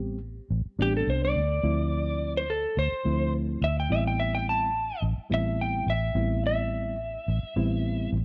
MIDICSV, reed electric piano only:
0, 0, Header, 1, 2, 480
1, 0, Start_track
1, 0, Key_signature, 0, "minor"
1, 0, Tempo, 564440
1, 1392, Time_signature, 4, 2, 24, 8
1, 7014, End_track
2, 0, Start_track
2, 0, Title_t, "Reed electric piano"
2, 0, Program_c, 0, 4
2, 0, Note_on_c, 0, 55, 75
2, 0, Note_on_c, 0, 59, 74
2, 0, Note_on_c, 0, 60, 79
2, 0, Note_on_c, 0, 67, 89
2, 147, Note_off_c, 0, 55, 0
2, 147, Note_off_c, 0, 59, 0
2, 149, Note_off_c, 0, 60, 0
2, 151, Note_off_c, 0, 67, 0
2, 667, Note_on_c, 0, 55, 74
2, 672, Note_on_c, 0, 59, 58
2, 673, Note_on_c, 0, 60, 59
2, 676, Note_on_c, 0, 62, 78
2, 1179, Note_off_c, 0, 55, 0
2, 1181, Note_off_c, 0, 59, 0
2, 1182, Note_off_c, 0, 60, 0
2, 1183, Note_off_c, 0, 62, 0
2, 1389, Note_on_c, 0, 53, 67
2, 1389, Note_on_c, 0, 57, 61
2, 1391, Note_on_c, 0, 60, 64
2, 1396, Note_on_c, 0, 64, 79
2, 2070, Note_off_c, 0, 53, 0
2, 2071, Note_off_c, 0, 57, 0
2, 2072, Note_off_c, 0, 60, 0
2, 2074, Note_off_c, 0, 64, 0
2, 2591, Note_on_c, 0, 53, 64
2, 2593, Note_on_c, 0, 57, 60
2, 2596, Note_on_c, 0, 60, 60
2, 2600, Note_on_c, 0, 64, 75
2, 3101, Note_off_c, 0, 53, 0
2, 3102, Note_off_c, 0, 57, 0
2, 3104, Note_off_c, 0, 60, 0
2, 3106, Note_off_c, 0, 64, 0
2, 3311, Note_on_c, 0, 55, 62
2, 3314, Note_on_c, 0, 59, 61
2, 3316, Note_on_c, 0, 60, 59
2, 3317, Note_on_c, 0, 64, 73
2, 3991, Note_off_c, 0, 55, 0
2, 3993, Note_off_c, 0, 59, 0
2, 3994, Note_off_c, 0, 60, 0
2, 3994, Note_off_c, 0, 64, 0
2, 4505, Note_on_c, 0, 55, 70
2, 4510, Note_on_c, 0, 59, 68
2, 4514, Note_on_c, 0, 60, 60
2, 4516, Note_on_c, 0, 64, 72
2, 5017, Note_off_c, 0, 55, 0
2, 5019, Note_off_c, 0, 59, 0
2, 5021, Note_off_c, 0, 60, 0
2, 5022, Note_off_c, 0, 64, 0
2, 5231, Note_on_c, 0, 55, 63
2, 5231, Note_on_c, 0, 59, 61
2, 5232, Note_on_c, 0, 60, 57
2, 5237, Note_on_c, 0, 64, 74
2, 5909, Note_off_c, 0, 55, 0
2, 5909, Note_off_c, 0, 59, 0
2, 5910, Note_off_c, 0, 60, 0
2, 5912, Note_off_c, 0, 64, 0
2, 6429, Note_on_c, 0, 55, 81
2, 6431, Note_on_c, 0, 59, 77
2, 6434, Note_on_c, 0, 60, 76
2, 6436, Note_on_c, 0, 64, 83
2, 6937, Note_off_c, 0, 55, 0
2, 6937, Note_off_c, 0, 59, 0
2, 6939, Note_off_c, 0, 60, 0
2, 6940, Note_off_c, 0, 64, 0
2, 7014, End_track
0, 0, End_of_file